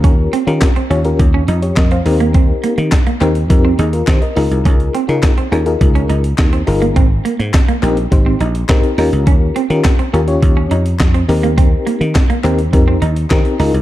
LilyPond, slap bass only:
\new Staff \with { instrumentName = "Slap bass" } { \clef bass \time 4/4 \key ees \mixolydian \tempo 4 = 104 ees,8 r16 ees16 r8 ees,8 ees,8 f,8 f,8 ees,8~ | ees,8 r16 ees16 r8 ees,8 f,8 ees,8 ees16 r16 des,16 c,16 | des,8 r16 des16 r8 ees,8 des,8 des,8 ees,8 g,,8 | aes,,8 r16 aes,16 r8 bes,,8 aes,,8 bes,,8 aes,16 r16 ees,16 des,16 |
ees,8 r16 ees16 r8 ees,8 ees,8 f,8 f,8 ees,8~ | ees,8 r16 ees16 r8 ees,8 f,8 ees,8 ees16 r16 des,16 c,16 | }